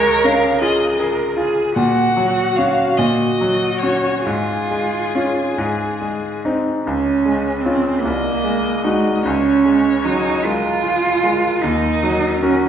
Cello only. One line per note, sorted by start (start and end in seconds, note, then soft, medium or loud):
0.00 0.63 A#4 loud
0.61 1.00 G#4 medium
0.99 1.36 A#4 medium
1.36 1.75 G#4 medium
1.75 2.94 F#4 medium
2.96 4.26 F#4 medium
4.25 6.22 F4 medium
6.84 7.62 C#4 medium
7.61 8.02 C4 medium
8.01 8.83 A#3 medium
8.84 9.23 G#3 medium
9.24 10.05 C#4 medium
10.04 10.46 D#4 medium
10.44 11.63 F4 medium
11.61 12.40 D#4 medium
12.41 12.69 C#4 medium